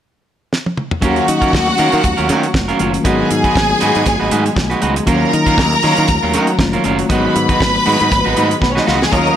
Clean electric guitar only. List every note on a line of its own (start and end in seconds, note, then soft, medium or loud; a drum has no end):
1.02 1.26 F#3 medium
1.02 1.26 C#4 medium
1.02 1.26 F4 medium
1.02 1.27 A#4 medium
1.28 muted clean electric guitar stroke soft
1.41 1.51 F#3 soft
1.41 1.52 C#4 medium
1.41 1.52 F4 medium
1.41 1.53 A#4 medium
1.53 muted clean electric guitar stroke soft
1.67 muted clean electric guitar stroke soft
1.78 1.92 F#3 medium
1.78 1.92 C#4 medium
1.78 1.92 F4 medium
1.78 1.91 A#4 medium
1.92 2.02 F#3 soft
1.92 2.02 C#4 soft
1.92 2.03 F4 soft
1.92 2.03 A#4 medium
2.03 muted clean electric guitar stroke soft
2.17 2.27 F#3 soft
2.17 2.27 C#4 soft
2.17 2.28 F4 medium
2.17 2.29 A#4 medium
2.28 2.49 F#3 medium
2.28 2.43 C#4 medium
2.28 2.43 F4 medium
2.28 2.42 A#4 medium
2.43 muted clean electric guitar stroke soft
2.54 muted clean electric guitar stroke soft
2.68 2.78 F#3 medium
2.68 2.79 C#4 medium
2.68 2.79 F4 medium
2.68 2.80 A#4 medium
2.79 2.97 F#3 medium
2.79 2.93 C#4 soft
2.79 2.92 F4 medium
2.79 2.92 A#4 medium
2.93 muted clean electric guitar stroke soft
3.05 3.28 G#3 medium
3.05 3.29 D#4 medium
3.05 3.29 F#4 medium
3.05 3.29 B4 medium
3.30 muted clean electric guitar stroke soft
3.45 3.55 G#3 medium
3.45 3.55 D#4 medium
3.45 3.55 F#4 medium
3.45 3.56 B4 medium
3.56 muted clean electric guitar stroke soft
3.70 muted clean electric guitar stroke soft
3.81 3.96 G#3 medium
3.81 3.95 D#4 medium
3.81 3.94 F#4 medium
3.81 3.94 B4 medium
3.95 4.05 G#3 soft
3.95 4.06 D#4 medium
3.95 4.06 F#4 medium
3.95 4.06 B4 medium
4.06 muted clean electric guitar stroke soft
4.20 4.29 G#3 soft
4.20 4.30 D#4 soft
4.20 4.30 F#4 soft
4.20 4.31 B4 medium
4.31 4.52 G#3 medium
4.31 4.45 D#4 medium
4.31 4.45 F#4 medium
4.31 4.44 B4 medium
4.45 muted clean electric guitar stroke soft
4.55 muted clean electric guitar stroke soft
4.70 4.80 G#3 soft
4.70 4.80 D#4 soft
4.70 4.81 F#4 medium
4.70 4.81 B4 medium
4.81 5.02 G#3 medium
4.81 4.96 D#4 medium
4.81 4.95 F#4 medium
4.81 4.94 B4 medium
4.96 muted clean electric guitar stroke soft
5.07 5.31 F#3 medium
5.07 5.31 C#4 medium
5.07 5.31 F4 medium
5.07 5.31 A#4 loud
5.32 muted clean electric guitar stroke soft
5.46 5.56 F#3 medium
5.46 5.57 C#4 medium
5.46 5.57 F4 medium
5.46 5.57 A#4 medium
5.57 muted clean electric guitar stroke soft
5.72 muted clean electric guitar stroke soft
5.83 5.98 F#3 medium
5.83 5.98 C#4 medium
5.83 5.97 F4 medium
5.83 5.97 A#4 medium
5.98 6.07 F#3 medium
5.98 6.08 C#4 medium
5.98 6.08 F4 medium
5.98 6.08 A#4 medium
6.08 muted clean electric guitar stroke soft
6.23 6.32 F#3 soft
6.23 6.33 C#4 soft
6.23 6.33 F4 medium
6.23 6.34 A#4 medium
6.34 6.55 F#3 medium
6.34 6.47 C#4 medium
6.34 6.47 F4 medium
6.34 6.46 A#4 medium
6.47 muted clean electric guitar stroke soft
6.59 muted clean electric guitar stroke soft
6.73 6.83 F#3 soft
6.73 6.84 C#4 soft
6.73 6.84 F4 medium
6.73 6.84 A#4 medium
6.84 7.05 F#3 medium
6.84 6.99 C#4 medium
6.84 6.98 F4 medium
6.84 6.98 A#4 medium
6.99 muted clean electric guitar stroke soft
7.09 7.33 G#3 medium
7.09 7.34 D#4 medium
7.09 7.34 F#4 loud
7.09 7.34 B4 medium
7.35 muted clean electric guitar stroke soft
7.50 7.59 G#3 medium
7.50 7.60 D#4 medium
7.50 7.60 F#4 medium
7.50 7.61 B4 medium
7.61 muted clean electric guitar stroke soft
7.75 muted clean electric guitar stroke soft
7.86 8.00 G#3 medium
7.86 7.99 D#4 medium
7.86 7.99 F#4 medium
7.86 7.98 B4 medium
8.00 8.10 G#3 soft
8.00 8.11 D#4 medium
8.00 8.11 F#4 soft
8.00 8.11 B4 medium
8.11 muted clean electric guitar stroke soft
8.25 8.34 G#3 soft
8.25 8.35 D#4 soft
8.25 8.36 F#4 medium
8.25 8.36 B4 medium
8.35 8.57 G#3 medium
8.35 8.50 D#4 medium
8.35 8.49 F#4 medium
8.35 8.48 B4 medium
8.49 muted clean electric guitar stroke soft
8.62 muted clean electric guitar stroke soft
8.75 8.85 G#3 soft
8.75 8.86 D#4 soft
8.75 8.86 F#4 medium
8.75 8.86 B4 medium
8.86 9.08 G#3 medium
8.86 9.00 D#4 medium
8.86 9.00 F#4 medium
8.86 8.99 B4 medium
9.00 muted clean electric guitar stroke soft
9.12 9.36 F#3 medium
9.12 9.36 C#4 medium
9.12 9.36 F4 medium
9.12 9.36 A#4 medium